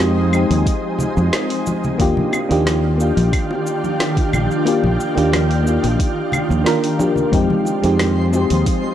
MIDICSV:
0, 0, Header, 1, 6, 480
1, 0, Start_track
1, 0, Tempo, 666667
1, 1438, Time_signature, 4, 2, 24, 8
1, 6440, End_track
2, 0, Start_track
2, 0, Title_t, "Synth texture"
2, 0, Program_c, 0, 99
2, 5282, Note_on_c, 0, 72, 82
2, 5282, Note_on_c, 0, 84, 88
2, 6440, Note_off_c, 0, 72, 0
2, 6440, Note_off_c, 0, 84, 0
2, 6440, End_track
3, 0, Start_track
3, 0, Title_t, "FM electric piano"
3, 0, Program_c, 1, 5
3, 0, Control_c, 1, 64, 127
3, 0, Note_on_c, 1, 56, 95
3, 0, Note_on_c, 1, 60, 79
3, 0, Note_on_c, 1, 63, 84
3, 0, Note_on_c, 1, 67, 99
3, 206, Note_off_c, 1, 56, 0
3, 210, Note_off_c, 1, 60, 0
3, 213, Note_off_c, 1, 63, 0
3, 216, Note_off_c, 1, 67, 0
3, 220, Note_on_c, 1, 56, 75
3, 234, Note_on_c, 1, 60, 68
3, 247, Note_on_c, 1, 63, 70
3, 262, Note_on_c, 1, 67, 85
3, 1401, Note_off_c, 1, 56, 0
3, 1408, Note_off_c, 1, 60, 0
3, 1415, Note_off_c, 1, 63, 0
3, 1422, Note_off_c, 1, 67, 0
3, 1428, Note_on_c, 1, 58, 96
3, 1436, Note_on_c, 1, 62, 88
3, 1444, Note_on_c, 1, 65, 93
3, 1446, Control_c, 1, 64, 0
3, 1450, Note_on_c, 1, 67, 109
3, 1562, Control_c, 1, 64, 127
3, 1768, Note_off_c, 1, 58, 0
3, 1772, Note_off_c, 1, 62, 0
3, 1776, Note_off_c, 1, 65, 0
3, 1778, Note_off_c, 1, 67, 0
3, 1793, Note_on_c, 1, 58, 97
3, 1799, Note_on_c, 1, 62, 84
3, 1807, Note_on_c, 1, 65, 83
3, 1814, Note_on_c, 1, 67, 105
3, 2126, Note_off_c, 1, 58, 0
3, 2129, Note_off_c, 1, 62, 0
3, 2132, Note_off_c, 1, 65, 0
3, 2136, Note_off_c, 1, 67, 0
3, 2140, Note_on_c, 1, 58, 77
3, 2155, Note_on_c, 1, 62, 69
3, 2170, Note_on_c, 1, 65, 72
3, 2184, Note_on_c, 1, 67, 86
3, 3321, Note_off_c, 1, 58, 0
3, 3329, Note_off_c, 1, 62, 0
3, 3336, Note_off_c, 1, 65, 0
3, 3343, Note_off_c, 1, 67, 0
3, 3349, Note_on_c, 1, 58, 94
3, 3357, Note_on_c, 1, 62, 85
3, 3363, Note_on_c, 1, 65, 93
3, 3370, Note_on_c, 1, 67, 109
3, 3688, Note_off_c, 1, 58, 0
3, 3692, Note_off_c, 1, 62, 0
3, 3695, Note_off_c, 1, 65, 0
3, 3699, Note_off_c, 1, 67, 0
3, 3710, Note_on_c, 1, 58, 96
3, 3719, Note_on_c, 1, 62, 88
3, 3725, Note_on_c, 1, 65, 85
3, 3733, Note_on_c, 1, 67, 103
3, 4044, Note_off_c, 1, 58, 0
3, 4048, Note_off_c, 1, 62, 0
3, 4052, Note_off_c, 1, 65, 0
3, 4054, Note_on_c, 1, 58, 78
3, 4055, Note_off_c, 1, 67, 0
3, 4069, Note_on_c, 1, 62, 74
3, 4083, Note_on_c, 1, 65, 71
3, 4097, Note_on_c, 1, 67, 81
3, 4763, Note_off_c, 1, 58, 0
3, 4770, Note_off_c, 1, 62, 0
3, 4778, Note_off_c, 1, 65, 0
3, 4782, Note_on_c, 1, 58, 93
3, 4784, Note_off_c, 1, 67, 0
3, 4790, Note_on_c, 1, 62, 95
3, 4796, Note_on_c, 1, 65, 90
3, 4804, Note_on_c, 1, 70, 107
3, 5002, Note_off_c, 1, 58, 0
3, 5006, Note_off_c, 1, 62, 0
3, 5009, Note_off_c, 1, 65, 0
3, 5013, Note_off_c, 1, 70, 0
3, 5027, Note_on_c, 1, 58, 80
3, 5034, Note_on_c, 1, 62, 76
3, 5042, Note_on_c, 1, 65, 76
3, 5047, Note_on_c, 1, 67, 92
3, 5245, Note_off_c, 1, 58, 0
3, 5248, Note_off_c, 1, 62, 0
3, 5252, Note_off_c, 1, 65, 0
3, 5255, Note_off_c, 1, 67, 0
3, 5268, Note_on_c, 1, 56, 93
3, 5275, Note_on_c, 1, 60, 86
3, 5283, Note_on_c, 1, 63, 87
3, 5285, Control_c, 1, 64, 0
3, 5288, Note_on_c, 1, 67, 107
3, 5400, Control_c, 1, 64, 127
3, 5607, Note_off_c, 1, 56, 0
3, 5611, Note_off_c, 1, 60, 0
3, 5615, Note_off_c, 1, 63, 0
3, 5618, Note_off_c, 1, 67, 0
3, 5635, Note_on_c, 1, 56, 92
3, 5641, Note_on_c, 1, 60, 84
3, 5649, Note_on_c, 1, 63, 86
3, 5654, Note_on_c, 1, 67, 106
3, 5966, Note_off_c, 1, 56, 0
3, 5970, Note_off_c, 1, 60, 0
3, 5973, Note_off_c, 1, 63, 0
3, 5976, Note_off_c, 1, 67, 0
3, 5979, Note_on_c, 1, 56, 74
3, 5994, Note_on_c, 1, 60, 78
3, 6006, Note_on_c, 1, 63, 70
3, 6022, Note_on_c, 1, 67, 91
3, 6440, Note_off_c, 1, 56, 0
3, 6440, Note_off_c, 1, 60, 0
3, 6440, Note_off_c, 1, 63, 0
3, 6440, Note_off_c, 1, 67, 0
3, 6440, End_track
4, 0, Start_track
4, 0, Title_t, "Ambient pad"
4, 0, Program_c, 2, 92
4, 0, Note_on_c, 2, 53, 77
4, 0, Note_on_c, 2, 56, 83
4, 0, Note_on_c, 2, 60, 76
4, 0, Note_on_c, 2, 63, 72
4, 1407, Note_off_c, 2, 56, 0
4, 1407, Note_off_c, 2, 63, 0
4, 1408, Note_off_c, 2, 53, 0
4, 1408, Note_off_c, 2, 60, 0
4, 1433, Note_on_c, 2, 65, 68
4, 1434, Note_on_c, 2, 67, 87
4, 1436, Note_on_c, 2, 51, 82
4, 1436, Note_on_c, 2, 62, 78
4, 5247, Note_off_c, 2, 65, 0
4, 5247, Note_off_c, 2, 67, 0
4, 5248, Note_off_c, 2, 51, 0
4, 5248, Note_off_c, 2, 62, 0
4, 5277, Note_on_c, 2, 53, 80
4, 5280, Note_on_c, 2, 60, 71
4, 5280, Note_on_c, 2, 63, 74
4, 5281, Note_on_c, 2, 56, 88
4, 6440, Note_off_c, 2, 53, 0
4, 6440, Note_off_c, 2, 56, 0
4, 6440, Note_off_c, 2, 60, 0
4, 6440, Note_off_c, 2, 63, 0
4, 6440, End_track
5, 0, Start_track
5, 0, Title_t, "Fingered electric bass"
5, 0, Program_c, 3, 33
5, 0, Note_on_c, 3, 41, 90
5, 314, Note_off_c, 3, 41, 0
5, 362, Note_on_c, 3, 39, 94
5, 450, Note_off_c, 3, 39, 0
5, 842, Note_on_c, 3, 41, 97
5, 930, Note_off_c, 3, 41, 0
5, 1438, Note_on_c, 3, 39, 96
5, 1533, Note_off_c, 3, 39, 0
5, 1804, Note_on_c, 3, 39, 86
5, 2235, Note_off_c, 3, 39, 0
5, 2281, Note_on_c, 3, 34, 96
5, 2369, Note_off_c, 3, 34, 0
5, 3119, Note_on_c, 3, 34, 80
5, 3213, Note_off_c, 3, 34, 0
5, 3484, Note_on_c, 3, 34, 92
5, 3571, Note_off_c, 3, 34, 0
5, 3724, Note_on_c, 3, 39, 90
5, 4155, Note_off_c, 3, 39, 0
5, 4203, Note_on_c, 3, 34, 91
5, 4290, Note_off_c, 3, 34, 0
5, 4682, Note_on_c, 3, 39, 96
5, 4770, Note_off_c, 3, 39, 0
5, 5275, Note_on_c, 3, 41, 94
5, 5371, Note_off_c, 3, 41, 0
5, 5645, Note_on_c, 3, 41, 87
5, 6075, Note_off_c, 3, 41, 0
5, 6124, Note_on_c, 3, 39, 93
5, 6211, Note_off_c, 3, 39, 0
5, 6440, End_track
6, 0, Start_track
6, 0, Title_t, "Drums"
6, 0, Note_on_c, 9, 38, 101
6, 0, Note_on_c, 9, 46, 63
6, 0, Note_on_c, 9, 63, 77
6, 1, Note_on_c, 9, 69, 44
6, 70, Note_off_c, 9, 38, 0
6, 70, Note_off_c, 9, 46, 0
6, 72, Note_off_c, 9, 63, 0
6, 73, Note_off_c, 9, 69, 0
6, 237, Note_on_c, 9, 75, 74
6, 240, Note_on_c, 9, 69, 80
6, 309, Note_off_c, 9, 75, 0
6, 312, Note_off_c, 9, 69, 0
6, 365, Note_on_c, 9, 46, 47
6, 365, Note_on_c, 9, 63, 86
6, 366, Note_on_c, 9, 60, 47
6, 367, Note_on_c, 9, 69, 37
6, 437, Note_off_c, 9, 46, 0
6, 437, Note_off_c, 9, 63, 0
6, 438, Note_off_c, 9, 60, 0
6, 439, Note_off_c, 9, 69, 0
6, 476, Note_on_c, 9, 36, 106
6, 480, Note_on_c, 9, 46, 66
6, 483, Note_on_c, 9, 69, 45
6, 548, Note_off_c, 9, 36, 0
6, 552, Note_off_c, 9, 46, 0
6, 555, Note_off_c, 9, 69, 0
6, 710, Note_on_c, 9, 64, 94
6, 719, Note_on_c, 9, 69, 79
6, 782, Note_off_c, 9, 64, 0
6, 791, Note_off_c, 9, 69, 0
6, 843, Note_on_c, 9, 69, 34
6, 847, Note_on_c, 9, 63, 69
6, 851, Note_on_c, 9, 60, 76
6, 915, Note_off_c, 9, 69, 0
6, 919, Note_off_c, 9, 63, 0
6, 923, Note_off_c, 9, 60, 0
6, 957, Note_on_c, 9, 38, 111
6, 957, Note_on_c, 9, 46, 71
6, 957, Note_on_c, 9, 75, 82
6, 959, Note_on_c, 9, 69, 50
6, 1029, Note_off_c, 9, 38, 0
6, 1029, Note_off_c, 9, 46, 0
6, 1029, Note_off_c, 9, 75, 0
6, 1031, Note_off_c, 9, 69, 0
6, 1082, Note_on_c, 9, 46, 43
6, 1154, Note_off_c, 9, 46, 0
6, 1198, Note_on_c, 9, 69, 81
6, 1203, Note_on_c, 9, 60, 56
6, 1204, Note_on_c, 9, 63, 97
6, 1270, Note_off_c, 9, 69, 0
6, 1275, Note_off_c, 9, 60, 0
6, 1276, Note_off_c, 9, 63, 0
6, 1324, Note_on_c, 9, 69, 35
6, 1328, Note_on_c, 9, 64, 87
6, 1396, Note_off_c, 9, 69, 0
6, 1400, Note_off_c, 9, 64, 0
6, 1437, Note_on_c, 9, 36, 116
6, 1438, Note_on_c, 9, 46, 61
6, 1440, Note_on_c, 9, 69, 43
6, 1509, Note_off_c, 9, 36, 0
6, 1510, Note_off_c, 9, 46, 0
6, 1512, Note_off_c, 9, 69, 0
6, 1563, Note_on_c, 9, 63, 91
6, 1563, Note_on_c, 9, 64, 91
6, 1635, Note_off_c, 9, 63, 0
6, 1635, Note_off_c, 9, 64, 0
6, 1674, Note_on_c, 9, 60, 74
6, 1678, Note_on_c, 9, 75, 74
6, 1680, Note_on_c, 9, 69, 81
6, 1746, Note_off_c, 9, 60, 0
6, 1750, Note_off_c, 9, 75, 0
6, 1752, Note_off_c, 9, 69, 0
6, 1806, Note_on_c, 9, 46, 33
6, 1808, Note_on_c, 9, 69, 38
6, 1878, Note_off_c, 9, 46, 0
6, 1880, Note_off_c, 9, 69, 0
6, 1912, Note_on_c, 9, 63, 66
6, 1920, Note_on_c, 9, 38, 100
6, 1920, Note_on_c, 9, 46, 69
6, 1923, Note_on_c, 9, 69, 49
6, 1984, Note_off_c, 9, 63, 0
6, 1992, Note_off_c, 9, 38, 0
6, 1992, Note_off_c, 9, 46, 0
6, 1995, Note_off_c, 9, 69, 0
6, 2044, Note_on_c, 9, 60, 50
6, 2116, Note_off_c, 9, 60, 0
6, 2162, Note_on_c, 9, 69, 85
6, 2234, Note_off_c, 9, 69, 0
6, 2282, Note_on_c, 9, 63, 91
6, 2284, Note_on_c, 9, 46, 42
6, 2287, Note_on_c, 9, 69, 35
6, 2354, Note_off_c, 9, 63, 0
6, 2356, Note_off_c, 9, 46, 0
6, 2359, Note_off_c, 9, 69, 0
6, 2397, Note_on_c, 9, 36, 110
6, 2398, Note_on_c, 9, 46, 64
6, 2398, Note_on_c, 9, 75, 74
6, 2401, Note_on_c, 9, 69, 44
6, 2469, Note_off_c, 9, 36, 0
6, 2470, Note_off_c, 9, 46, 0
6, 2470, Note_off_c, 9, 75, 0
6, 2473, Note_off_c, 9, 69, 0
6, 2525, Note_on_c, 9, 60, 78
6, 2597, Note_off_c, 9, 60, 0
6, 2640, Note_on_c, 9, 69, 83
6, 2712, Note_off_c, 9, 69, 0
6, 2764, Note_on_c, 9, 63, 65
6, 2767, Note_on_c, 9, 69, 34
6, 2836, Note_off_c, 9, 63, 0
6, 2839, Note_off_c, 9, 69, 0
6, 2877, Note_on_c, 9, 60, 47
6, 2881, Note_on_c, 9, 38, 109
6, 2881, Note_on_c, 9, 46, 73
6, 2884, Note_on_c, 9, 69, 51
6, 2949, Note_off_c, 9, 60, 0
6, 2953, Note_off_c, 9, 38, 0
6, 2953, Note_off_c, 9, 46, 0
6, 2956, Note_off_c, 9, 69, 0
6, 3001, Note_on_c, 9, 36, 115
6, 3003, Note_on_c, 9, 46, 45
6, 3073, Note_off_c, 9, 36, 0
6, 3075, Note_off_c, 9, 46, 0
6, 3119, Note_on_c, 9, 63, 89
6, 3120, Note_on_c, 9, 75, 70
6, 3121, Note_on_c, 9, 64, 85
6, 3123, Note_on_c, 9, 69, 84
6, 3191, Note_off_c, 9, 63, 0
6, 3192, Note_off_c, 9, 75, 0
6, 3193, Note_off_c, 9, 64, 0
6, 3195, Note_off_c, 9, 69, 0
6, 3247, Note_on_c, 9, 69, 36
6, 3319, Note_off_c, 9, 69, 0
6, 3355, Note_on_c, 9, 60, 72
6, 3361, Note_on_c, 9, 46, 59
6, 3364, Note_on_c, 9, 69, 43
6, 3427, Note_off_c, 9, 60, 0
6, 3433, Note_off_c, 9, 46, 0
6, 3436, Note_off_c, 9, 69, 0
6, 3481, Note_on_c, 9, 64, 78
6, 3485, Note_on_c, 9, 63, 91
6, 3553, Note_off_c, 9, 64, 0
6, 3557, Note_off_c, 9, 63, 0
6, 3603, Note_on_c, 9, 69, 85
6, 3675, Note_off_c, 9, 69, 0
6, 3722, Note_on_c, 9, 60, 49
6, 3727, Note_on_c, 9, 46, 31
6, 3729, Note_on_c, 9, 69, 35
6, 3794, Note_off_c, 9, 60, 0
6, 3799, Note_off_c, 9, 46, 0
6, 3801, Note_off_c, 9, 69, 0
6, 3837, Note_on_c, 9, 63, 66
6, 3841, Note_on_c, 9, 38, 96
6, 3841, Note_on_c, 9, 46, 63
6, 3841, Note_on_c, 9, 75, 79
6, 3843, Note_on_c, 9, 69, 45
6, 3909, Note_off_c, 9, 63, 0
6, 3913, Note_off_c, 9, 38, 0
6, 3913, Note_off_c, 9, 46, 0
6, 3913, Note_off_c, 9, 75, 0
6, 3915, Note_off_c, 9, 69, 0
6, 3965, Note_on_c, 9, 46, 28
6, 4037, Note_off_c, 9, 46, 0
6, 4083, Note_on_c, 9, 69, 78
6, 4155, Note_off_c, 9, 69, 0
6, 4201, Note_on_c, 9, 60, 80
6, 4203, Note_on_c, 9, 46, 42
6, 4203, Note_on_c, 9, 63, 87
6, 4206, Note_on_c, 9, 69, 35
6, 4273, Note_off_c, 9, 60, 0
6, 4275, Note_off_c, 9, 46, 0
6, 4275, Note_off_c, 9, 63, 0
6, 4278, Note_off_c, 9, 69, 0
6, 4315, Note_on_c, 9, 36, 109
6, 4319, Note_on_c, 9, 46, 62
6, 4321, Note_on_c, 9, 69, 47
6, 4387, Note_off_c, 9, 36, 0
6, 4391, Note_off_c, 9, 46, 0
6, 4393, Note_off_c, 9, 69, 0
6, 4551, Note_on_c, 9, 64, 81
6, 4559, Note_on_c, 9, 75, 78
6, 4562, Note_on_c, 9, 69, 76
6, 4564, Note_on_c, 9, 60, 45
6, 4623, Note_off_c, 9, 64, 0
6, 4631, Note_off_c, 9, 75, 0
6, 4634, Note_off_c, 9, 69, 0
6, 4636, Note_off_c, 9, 60, 0
6, 4674, Note_on_c, 9, 63, 75
6, 4687, Note_on_c, 9, 69, 36
6, 4746, Note_off_c, 9, 63, 0
6, 4759, Note_off_c, 9, 69, 0
6, 4798, Note_on_c, 9, 38, 105
6, 4798, Note_on_c, 9, 46, 72
6, 4801, Note_on_c, 9, 69, 51
6, 4870, Note_off_c, 9, 38, 0
6, 4870, Note_off_c, 9, 46, 0
6, 4873, Note_off_c, 9, 69, 0
6, 4923, Note_on_c, 9, 46, 43
6, 4926, Note_on_c, 9, 69, 33
6, 4995, Note_off_c, 9, 46, 0
6, 4998, Note_off_c, 9, 69, 0
6, 5035, Note_on_c, 9, 60, 79
6, 5037, Note_on_c, 9, 63, 98
6, 5040, Note_on_c, 9, 69, 80
6, 5107, Note_off_c, 9, 60, 0
6, 5109, Note_off_c, 9, 63, 0
6, 5112, Note_off_c, 9, 69, 0
6, 5153, Note_on_c, 9, 64, 77
6, 5165, Note_on_c, 9, 69, 33
6, 5225, Note_off_c, 9, 64, 0
6, 5237, Note_off_c, 9, 69, 0
6, 5276, Note_on_c, 9, 36, 112
6, 5278, Note_on_c, 9, 46, 60
6, 5280, Note_on_c, 9, 69, 41
6, 5348, Note_off_c, 9, 36, 0
6, 5350, Note_off_c, 9, 46, 0
6, 5352, Note_off_c, 9, 69, 0
6, 5400, Note_on_c, 9, 63, 85
6, 5403, Note_on_c, 9, 64, 68
6, 5472, Note_off_c, 9, 63, 0
6, 5475, Note_off_c, 9, 64, 0
6, 5509, Note_on_c, 9, 60, 45
6, 5520, Note_on_c, 9, 69, 79
6, 5581, Note_off_c, 9, 60, 0
6, 5592, Note_off_c, 9, 69, 0
6, 5642, Note_on_c, 9, 46, 32
6, 5645, Note_on_c, 9, 69, 35
6, 5714, Note_off_c, 9, 46, 0
6, 5717, Note_off_c, 9, 69, 0
6, 5757, Note_on_c, 9, 38, 101
6, 5757, Note_on_c, 9, 46, 68
6, 5757, Note_on_c, 9, 75, 80
6, 5759, Note_on_c, 9, 63, 72
6, 5759, Note_on_c, 9, 69, 43
6, 5829, Note_off_c, 9, 38, 0
6, 5829, Note_off_c, 9, 46, 0
6, 5829, Note_off_c, 9, 75, 0
6, 5831, Note_off_c, 9, 63, 0
6, 5831, Note_off_c, 9, 69, 0
6, 6000, Note_on_c, 9, 69, 84
6, 6001, Note_on_c, 9, 60, 75
6, 6072, Note_off_c, 9, 69, 0
6, 6073, Note_off_c, 9, 60, 0
6, 6122, Note_on_c, 9, 46, 46
6, 6125, Note_on_c, 9, 69, 36
6, 6128, Note_on_c, 9, 63, 97
6, 6194, Note_off_c, 9, 46, 0
6, 6197, Note_off_c, 9, 69, 0
6, 6200, Note_off_c, 9, 63, 0
6, 6238, Note_on_c, 9, 46, 64
6, 6239, Note_on_c, 9, 36, 104
6, 6241, Note_on_c, 9, 69, 44
6, 6310, Note_off_c, 9, 46, 0
6, 6311, Note_off_c, 9, 36, 0
6, 6313, Note_off_c, 9, 69, 0
6, 6365, Note_on_c, 9, 60, 46
6, 6437, Note_off_c, 9, 60, 0
6, 6440, End_track
0, 0, End_of_file